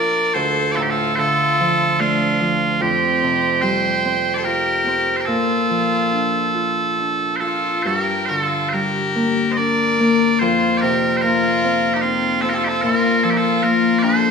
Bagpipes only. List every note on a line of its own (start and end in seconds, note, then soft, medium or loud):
0.00 0.34 D5 medium
0.34 0.72 C5 medium
0.72 0.76 D5 medium
0.76 0.82 A4 medium
0.82 0.90 G4 medium
0.90 1.16 A4 medium
1.16 2.00 A4 medium
1.16 1.19 C5 medium
2.00 2.81 F4 medium
2.81 3.61 G4 medium
3.61 4.34 C5 medium
4.34 4.45 C5 medium
4.34 4.38 D5 medium
4.45 5.16 A#4 medium
5.16 5.25 A#4 soft
5.16 5.20 C5 soft
5.25 7.36 A4 medium
7.36 7.83 A4 medium
7.36 7.40 C5 medium
7.83 7.97 A4 medium
7.83 7.86 C5 medium
7.97 8.25 A#4 medium
8.25 8.40 A#4 medium
8.25 8.29 C5 medium
8.40 8.69 A4 medium
8.69 9.52 A#4 medium
8.69 8.73 C5 medium
9.52 9.57 D#5 medium
9.57 10.39 D5 medium
10.39 10.77 C5 medium
10.77 11.16 A#4 medium
10.77 10.81 D5 medium
11.16 11.21 C5 medium
11.21 11.94 A#4 medium
11.94 12.01 G4 medium
12.01 12.41 F4 medium
12.41 12.49 A4 medium
12.49 12.55 A#4 medium
12.55 12.64 A4 medium
12.64 12.68 G4 medium
12.68 12.82 A4 medium
12.82 13.24 A#4 medium
13.24 13.30 A4 medium
13.30 13.37 G4 medium
13.37 13.63 A4 medium
13.63 13.98 A#4 medium
13.98 14.02 D5 medium
14.02 14.31 C5 medium